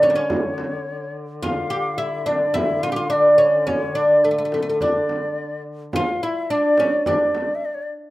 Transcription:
0.00 1.43 D3 medium
0.00 0.09 C#4 medium
0.00 0.17 D5 medium
0.00 frame drum medium
0.10 0.16 A#3 medium
0.15 1.11 C#4 medium
0.15 1.15 C#5 medium
0.30 frame drum medium
0.58 frame drum medium
1.43 6.00 D3 medium
1.43 1.69 F4 medium
1.43 1.94 F5 medium
1.43 frame drum medium
1.70 1.97 G4 medium
1.94 2.28 E4 medium
1.94 2.01 F5 medium
1.99 2.31 E5 medium
2.26 2.56 D4 medium
2.26 2.58 D5 medium
2.26 frame drum medium
2.54 2.83 E4 medium
2.54 2.85 E5 medium
2.54 frame drum medium
2.83 2.91 F4 medium
2.83 2.98 F5 medium
2.83 frame drum medium
2.92 2.96 G4 medium
2.96 3.09 F4 medium
2.96 3.15 F5 medium
3.10 3.38 D4 medium
3.10 3.71 D5 medium
3.38 3.65 C#4 medium
3.67 3.94 C#4 medium
3.67 3.99 C#5 medium
3.67 frame drum medium
3.95 4.25 D4 medium
3.95 4.26 D5 medium
4.24 4.30 A3 medium
4.24 4.81 A4 medium
4.31 4.37 A3 medium
4.38 4.44 A3 medium
4.45 4.53 A3 medium
4.52 4.61 A3 medium
4.52 frame drum medium
4.62 4.68 A3 medium
4.69 4.77 A3 medium
4.81 5.62 D4 medium
4.81 5.62 D5 medium
4.81 frame drum medium
5.09 frame drum medium
5.93 6.23 F4 loud
5.93 6.24 F5 medium
5.93 frame drum medium
6.23 6.50 E4 medium
6.23 6.52 E5 medium
6.50 6.79 D4 medium
6.50 7.06 D5 medium
6.78 7.07 C#4 medium
6.78 frame drum medium
7.06 7.87 D4 medium
7.06 7.56 D5 medium
7.06 frame drum loud
7.35 frame drum medium
7.55 7.67 E5 medium
7.65 7.76 D5 medium
7.74 7.84 C#5 medium
7.83 7.92 D5 medium

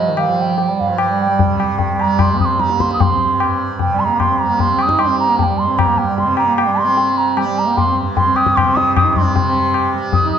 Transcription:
0.00 0.80 G2 medium
0.00 1.42 C3 medium
0.00 0.10 F3 medium
0.00 0.17 G3 medium
0.00 0.20 D#5 medium
0.09 0.30 D#3 medium
0.17 1.98 G3 medium
0.17 0.42 F5 medium
0.17 tabla na medium
0.28 0.71 F3 medium
0.41 0.59 G5 medium
0.58 0.81 G5 medium
0.58 tabla tin medium
0.69 0.90 G3 medium
0.80 3.18 G2 medium
0.80 0.99 F5 medium
0.89 1.08 F3 soft
0.98 1.18 G5 medium
0.98 tabla na medium
1.09 1.28 G3 medium
1.21 1.57 G5 medium
1.29 1.66 G3 medium
1.39 3.78 C3 medium
1.39 tabla tin medium
1.39 tabla ge medium
1.60 tabla na medium
1.79 2.02 G5 medium
1.79 tabla tin medium
1.79 tabla ge medium
1.90 2.32 G3 medium
1.98 2.59 G3 soft
1.98 2.22 A#5 medium
1.98 tabla na medium
2.19 2.40 C6 medium
2.19 tabla na medium
2.19 tabla ge medium
2.31 2.50 C4 medium
2.40 2.46 D#6 medium
2.40 tabla ge medium
2.45 2.61 C6 medium
2.51 2.72 C4 medium
2.59 4.40 G3 medium
2.59 2.82 A#5 medium
2.59 tabla te medium
2.70 3.11 A#3 medium
2.70 tabla te medium
2.80 2.93 C6 medium
2.80 tabla ke medium
2.91 3.03 D#6 medium
2.91 tabla te medium
3.00 3.60 C6 medium
3.00 tabla tin loud
3.00 tabla ge medium
3.10 3.70 C4 medium
3.19 5.60 G2 medium
3.40 tabla na medium
3.78 6.17 C3 medium
3.78 4.01 G5 medium
3.78 tabla tin medium
3.78 tabla ge medium
3.90 4.11 G3 medium
4.00 4.05 C6 medium
4.04 4.21 A#5 medium
4.09 4.31 A#3 medium
4.19 4.40 C6 medium
4.19 tabla na medium
4.19 tabla ge medium
4.29 4.51 C4 medium
4.39 4.98 G3 soft
4.39 4.62 A#5 medium
4.50 4.69 A#3 medium
4.59 4.83 C6 medium
4.59 tabla tin medium
4.59 tabla ge medium
4.70 4.92 C4 medium
4.79 5.01 D#6 medium
4.79 tabla na medium
4.89 5.11 D#4 medium
4.89 tabla ke medium
4.98 6.79 G3 medium
4.98 5.19 C6 medium
4.98 tabla na medium
5.09 5.31 C4 medium
5.20 5.38 A#5 medium
5.29 5.47 A#3 medium
5.39 5.44 A#5 medium
5.39 tabla tin medium
5.39 tabla ge medium
5.43 5.60 G5 medium
5.47 5.69 G3 medium
5.58 7.97 G2 medium
5.58 5.80 C6 medium
5.67 5.89 C4 medium
5.78 6.00 A#5 medium
5.78 tabla na medium
5.78 tabla ge medium
5.87 6.06 A#3 medium
5.98 6.18 G5 medium
6.06 6.28 G3 medium
6.18 8.57 C3 medium
6.18 6.37 C6 medium
6.18 tabla tin medium
6.27 6.46 C4 medium
6.37 6.56 A#5 medium
6.37 tabla na medium
6.46 6.68 A#3 medium
6.58 6.80 G5 medium
6.58 tabla na medium
6.67 6.87 G3 medium
6.79 7.37 G3 medium
6.79 7.19 C6 loud
6.85 7.48 C4 medium
6.97 tabla tin medium
7.17 7.40 A#5 medium
7.37 9.13 G3 medium
7.37 7.60 G5 medium
7.37 tabla na medium
7.46 7.68 G3 medium
7.59 7.79 A#5 medium
7.66 7.88 A#3 medium
7.77 7.97 C6 medium
7.77 tabla tin medium
7.77 tabla ge medium
7.86 8.06 C4 medium
7.97 10.39 G2 medium
8.17 8.37 C6 medium
8.17 tabla tin medium
8.17 tabla ge medium
8.25 8.62 C4 medium
8.36 8.58 D#6 loud
8.36 tabla na medium
8.46 tabla ke medium
8.56 9.35 C3 medium
8.56 8.77 C6 loud
8.56 tabla na medium
8.56 tabla ge medium
8.65 9.06 C4 medium
8.75 8.95 D#6 loud
8.75 tabla te medium
8.96 9.19 D#6 loud
8.96 tabla na medium
8.96 tabla ge medium
9.05 9.26 D#4 medium
9.13 9.94 G3 medium
9.13 9.35 C6 medium
9.13 tabla ge medium
9.24 9.43 C4 medium
9.35 10.39 C3 medium
9.35 9.90 C6 medium
9.35 tabla tin loud
9.35 tabla ge medium
9.44 9.99 C4 medium
9.74 tabla na medium
9.94 10.39 G3 medium
10.13 10.31 D#6 medium
10.13 tabla tin medium
10.13 tabla ge medium
10.22 10.39 D#4 medium
10.33 10.39 D#6 medium

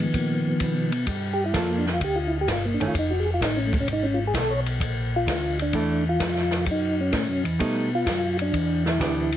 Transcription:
0.00 0.91 D#3 medium
0.00 0.91 F3 medium
0.00 0.91 B3 medium
0.13 0.44 A#2 medium
0.13 kick soft
0.13 ride medium
0.46 0.53 A#2 soft
0.60 1.06 B2 medium
0.60 kick soft
0.60 hi-hat pedal medium
0.60 ride medium
0.92 ride soft
1.06 1.53 G2 medium
1.06 kick soft
1.06 ride medium
1.33 1.44 G4 medium
1.45 1.54 E4 medium
1.54 2.00 F2 medium
1.54 1.83 A#3 medium
1.54 1.84 F4 medium
1.54 1.84 A4 medium
1.54 kick soft
1.54 snare medium
1.54 hi-hat pedal medium
1.54 ride medium
1.58 1.72 F4 medium
1.70 1.86 A#3 medium
1.78 1.90 D4 medium
1.86 snare soft
1.93 2.01 F4 medium
2.00 2.46 D2 medium
2.00 2.19 G4 medium
2.00 kick soft
2.00 ride medium
2.16 2.32 F4 medium
2.27 2.37 E4 medium
2.41 2.48 G4 medium
2.48 2.78 G1 medium
2.48 kick soft
2.48 snare medium
2.48 hi-hat pedal medium
2.48 ride medium
2.52 2.66 F4 medium
2.65 2.80 A#3 medium
2.74 2.84 D4 medium
2.80 2.88 G1 soft
2.80 2.93 D#3 medium
2.80 2.94 A3 medium
2.80 2.94 C#4 medium
2.80 ride soft
2.88 2.95 F4 medium
2.94 3.40 F1 medium
2.94 kick soft
2.94 ride medium
2.99 3.12 D#4 medium
3.10 3.26 F#4 medium
3.20 3.30 G#4 medium
3.34 3.41 F4 medium
3.40 3.86 A1 medium
3.40 kick soft
3.40 snare medium
3.40 hi-hat pedal medium
3.40 ride medium
3.45 3.59 D#4 medium
3.57 3.73 C#4 medium
3.67 3.77 A3 medium
3.73 kick medium
3.73 ride soft
3.80 3.88 C#4 medium
3.87 4.33 G#1 medium
3.87 kick soft
3.87 ride medium
3.93 4.06 D#4 medium
4.03 4.19 C#4 medium
4.14 4.24 F4 medium
4.27 4.35 G#4 medium
4.34 4.79 B1 medium
4.34 kick soft
4.34 snare medium
4.34 hi-hat pedal soft
4.34 ride medium
4.40 4.53 A4 medium
4.50 4.60 C#5 medium
4.66 ride soft
4.80 5.26 A#1 medium
4.80 kick soft
4.80 ride medium
5.16 5.58 F4 medium
5.27 5.73 D2 medium
5.27 kick soft
5.27 snare medium
5.27 hi-hat pedal medium
5.27 ride medium
5.59 6.04 D4 medium
5.59 ride soft
5.73 6.19 E2 medium
5.73 6.03 E3 medium
5.73 6.04 A3 medium
5.73 6.04 D4 medium
5.73 kick soft
5.73 ride medium
6.09 6.65 F4 loud
6.20 6.66 F2 medium
6.20 kick soft
6.20 snare medium
6.20 hi-hat pedal medium
6.20 ride medium
6.36 snare soft
6.51 snare soft
6.51 ride soft
6.66 7.12 F#2 medium
6.66 kick soft
6.66 ride medium
6.71 7.00 D#4 medium
7.01 7.43 C#4 medium
7.12 7.28 A2 medium
7.12 kick soft
7.12 snare medium
7.12 hi-hat pedal medium
7.12 ride medium
7.28 7.45 F#2 medium
7.44 7.59 E2 medium
7.44 ride soft
7.59 8.05 B2 medium
7.59 7.89 G3 medium
7.59 7.89 A3 medium
7.59 7.89 D#4 medium
7.59 kick soft
7.59 ride medium
7.95 8.37 F4 loud
8.06 8.52 F#2 medium
8.06 kick soft
8.06 snare medium
8.06 hi-hat pedal soft
8.06 ride medium
8.39 8.84 D4 medium
8.39 ride soft
8.53 8.98 E2 medium
8.53 kick soft
8.53 ride medium
8.86 9.37 E4 medium
8.86 snare medium
8.99 9.37 D2 medium
8.99 9.29 E3 medium
8.99 9.29 B3 medium
8.99 9.29 D4 medium
8.99 9.29 G4 medium
8.99 kick soft
8.99 snare medium
8.99 hi-hat pedal medium
8.99 ride medium
9.32 ride soft

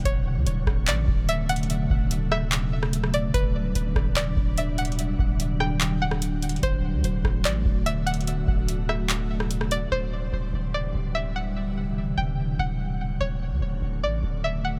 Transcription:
0.00 6.59 B2 medium
0.00 3.30 D3 medium
0.05 0.38 D1 loud
0.05 3.31 C#3 medium
0.05 9.88 F#3 medium
0.05 3.31 A3 medium
0.05 0.44 C#5 loud
0.05 kick loud
0.05 closed hi-hat medium
0.36 0.46 D2 loud
0.47 0.66 D1 loud
0.47 closed hi-hat medium
0.67 0.89 D1 loud
0.67 kick medium
0.67 cross-stick medium
0.88 1.07 A1 loud
0.88 1.27 D5 medium
0.88 clap loud
0.88 closed hi-hat medium
1.08 1.87 D1 loud
1.08 kick loud
1.29 1.48 E5 medium
1.29 closed hi-hat medium
1.49 1.69 F#5 medium
1.49 closed hi-hat medium
1.56 closed hi-hat medium
1.63 closed hi-hat soft
1.70 closed hi-hat medium
1.90 3.30 D1 loud
1.90 kick medium
2.11 closed hi-hat medium
2.32 2.51 E5 medium
2.32 cross-stick medium
2.52 clap loud
2.52 closed hi-hat medium
2.83 cross-stick medium
2.93 closed hi-hat medium
3.04 cross-stick medium
3.14 3.33 D5 medium
3.14 closed hi-hat medium
3.34 3.74 D1 loud
3.34 9.88 D3 medium
3.34 6.60 G3 medium
3.34 6.60 D4 medium
3.34 3.73 B4 loud
3.34 kick loud
3.34 closed hi-hat medium
3.75 3.95 D1 loud
3.75 closed hi-hat medium
3.96 4.35 D1 loud
3.96 kick medium
3.96 cross-stick medium
4.16 4.55 D5 medium
4.16 clap loud
4.16 closed hi-hat medium
4.37 5.16 D1 loud
4.37 kick loud
4.58 4.77 E5 medium
4.58 closed hi-hat medium
4.78 4.98 F#5 medium
4.78 closed hi-hat medium
4.85 closed hi-hat medium
4.92 closed hi-hat soft
4.99 closed hi-hat medium
5.19 6.59 D1 loud
5.19 kick medium
5.40 closed hi-hat medium
5.60 5.99 G5 medium
5.60 cross-stick medium
5.81 clap loud
5.81 closed hi-hat medium
6.02 6.21 F#5 medium
6.11 cross-stick medium
6.22 closed hi-hat medium
6.43 closed hi-hat medium
6.49 closed hi-hat medium
6.56 closed hi-hat soft
6.63 6.95 D1 loud
6.63 9.89 B2 medium
6.63 9.89 A3 medium
6.63 9.89 F#4 medium
6.63 7.02 C5 medium
6.63 kick loud
6.63 closed hi-hat medium
6.94 7.04 D2 medium
7.04 7.24 D1 loud
7.04 closed hi-hat medium
7.24 7.47 D1 loud
7.24 kick medium
7.24 cross-stick medium
7.45 7.65 A1 loud
7.45 7.84 D5 medium
7.45 clap loud
7.45 closed hi-hat medium
7.66 8.45 D1 loud
7.66 kick loud
7.86 8.06 E5 loud
7.86 closed hi-hat medium
8.06 8.26 F#5 medium
8.06 closed hi-hat medium
8.14 closed hi-hat medium
8.21 closed hi-hat soft
8.27 closed hi-hat medium
8.48 9.88 D1 loud
8.48 kick medium
8.68 closed hi-hat medium
8.89 9.09 E5 medium
8.89 cross-stick medium
9.10 clap loud
9.10 closed hi-hat medium
9.40 cross-stick medium
9.51 closed hi-hat medium
9.61 cross-stick medium
9.71 9.91 D5 medium
9.71 closed hi-hat medium
9.92 10.31 D1 loud
9.92 13.17 B2 medium
9.92 13.17 C3 medium
9.92 14.79 D3 medium
9.92 13.17 E3 medium
9.92 13.17 G3 medium
9.92 10.30 C5 loud
10.33 10.53 D1 loud
10.53 10.93 D1 loud
10.74 11.13 D5 medium
10.95 12.14 D1 loud
11.15 11.34 E5 medium
11.36 11.55 F#5 medium
12.18 12.57 D1 loud
12.18 12.56 G5 medium
12.59 13.18 D1 loud
12.59 12.79 F#5 medium
13.21 13.53 D1 loud
13.21 14.79 B2 medium
13.21 14.79 C#3 medium
13.21 14.79 F#3 medium
13.21 14.79 A3 medium
13.21 13.59 C#5 medium
13.51 13.61 D2 loud
13.62 13.81 D1 loud
13.82 14.04 D1 loud
14.03 14.22 A1 loud
14.03 14.42 D5 medium
14.23 14.79 D1 loud
14.44 14.64 E5 medium
14.65 14.79 F#5 medium

